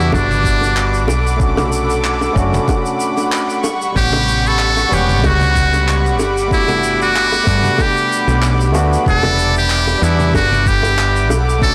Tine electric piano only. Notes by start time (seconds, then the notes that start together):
Already playing: G3 B3 D4 F#4
1.37 A3 C#4
1.41 D4 F#4
2.33 A3 C#4 D4
2.39 F#4
3.92 G3 B3
3.97 C#4 F#5
4.89 G3 B3
4.93 C#4 F#5
6.48 A3 B3
6.52 D4 F#4
7.44 A3 B3 D4
7.49 F#5
8.72 A3 B3 D4 F#4
9.03 G3 B3
9.07 D4 F#5
9.99 G3 B3
10.03 D4 F#5
11.59 A3 C#4 D4
11.65 F#4